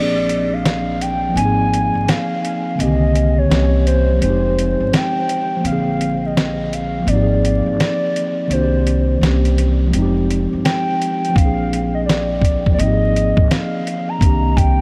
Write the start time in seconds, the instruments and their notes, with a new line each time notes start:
Already playing: upright bass A#1, tine electric piano F3 A#3 C4, soft synth lead D5
0.00 tine electric piano D4 G#4
0.29 closed hi-hat
0.54 soft synth lead F5
0.65 snare, closed hi-hat
1.01 soft synth lead G5, closed hi-hat
1.29 tine electric piano F3 A#3
1.36 upright bass G#1, tine electric piano C4, soft synth lead G#5, closed hi-hat
1.41 tine electric piano D#4 G#4
1.74 closed hi-hat
1.95 upright bass G#1
2.08 soft synth lead F5, snare, closed hi-hat
2.45 closed hi-hat
2.75 upright bass C2, tine electric piano D3 A#3
2.80 tine electric piano D3 D#3 C4, soft synth lead D#5, closed hi-hat
2.84 tine electric piano G4
3.15 closed hi-hat
3.38 soft synth lead C#5
3.47 upright bass C2, tine electric piano C#3 A#3
3.51 tine electric piano E3 C4 C#4 G4, snare, closed hi-hat
3.87 soft synth lead C5, closed hi-hat
4.14 tine electric piano F3
4.18 upright bass F1, tine electric piano G#3 C4, closed hi-hat
4.23 tine electric piano D#4, soft synth lead C5
4.30 tine electric piano G4
4.59 closed hi-hat
4.80 upright bass G1
4.93 soft synth lead G5, snare, closed hi-hat
5.29 closed hi-hat
5.57 tine electric piano F3 A#3
5.64 upright bass A#1, tine electric piano C4, soft synth lead F5, closed hi-hat
5.68 tine electric piano D3
5.73 tine electric piano G#4
6.01 closed hi-hat
6.26 soft synth lead D#5
6.37 snare, closed hi-hat
6.73 soft synth lead F5, closed hi-hat
7.00 tine electric piano F3
7.04 upright bass G#1, tine electric piano A#3, soft synth lead D5, closed hi-hat
7.09 tine electric piano C4 D#4
7.16 tine electric piano G4
7.22 tine electric piano G#4
7.45 closed hi-hat
7.66 upright bass G#1
7.80 snare, closed hi-hat
8.16 closed hi-hat
8.48 upright bass C2, tine electric piano D#3 A#3 C4, closed hi-hat
8.52 tine electric piano D4 F#4, soft synth lead C5
8.62 tine electric piano G4
8.87 closed hi-hat
9.19 upright bass C2, tine electric piano E3 A#3
9.23 tine electric piano C4 C#4, snare, closed hi-hat
9.27 tine electric piano G4
9.45 closed hi-hat
9.58 closed hi-hat
9.87 tine electric piano F3
9.91 upright bass F1, tine electric piano G#3, closed hi-hat
9.95 tine electric piano C4 D#4
10.02 tine electric piano G4
10.30 closed hi-hat
10.53 upright bass G1
10.64 soft synth lead G5, snare, closed hi-hat
11.02 closed hi-hat
11.25 closed hi-hat
11.30 tine electric piano F3
11.34 upright bass A#1, tine electric piano A#3 C4, soft synth lead F5, kick
11.38 tine electric piano D4, closed hi-hat
11.45 tine electric piano G#4
11.73 closed hi-hat
11.95 soft synth lead D#5
12.06 soft synth lead D5, snare, closed hi-hat
12.42 kick, closed hi-hat
12.66 kick
12.71 tine electric piano F3 A#3, soft synth lead D5
12.78 upright bass G#1, tine electric piano C4, soft synth lead D#5, closed hi-hat
12.83 tine electric piano D#4 G4
12.94 tine electric piano G#4
13.16 closed hi-hat
13.37 upright bass G#1, kick
13.50 soft synth lead F5, snare, closed hi-hat
13.87 closed hi-hat
14.09 soft synth lead A#5
14.19 upright bass C2, tine electric piano D#3 A#3 C4, kick, closed hi-hat
14.24 tine electric piano D4 G4
14.56 soft synth lead G5, kick, closed hi-hat